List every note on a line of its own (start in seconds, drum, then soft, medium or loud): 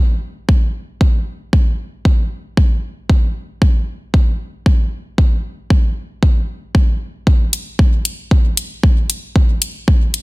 0.49 kick loud
1.01 kick loud
1.53 kick loud
2.05 kick loud
2.57 kick loud
3.10 kick loud
3.62 kick loud
4.14 kick loud
4.66 kick loud
5.18 kick loud
5.70 kick loud
6.23 kick loud
6.75 kick loud
7.27 kick loud
7.53 closed hi-hat medium
7.79 kick loud
8.05 closed hi-hat medium
8.31 kick loud
8.57 closed hi-hat medium
8.83 kick loud
9.10 closed hi-hat medium
9.36 kick loud
9.62 closed hi-hat medium
9.88 kick loud
10.14 closed hi-hat medium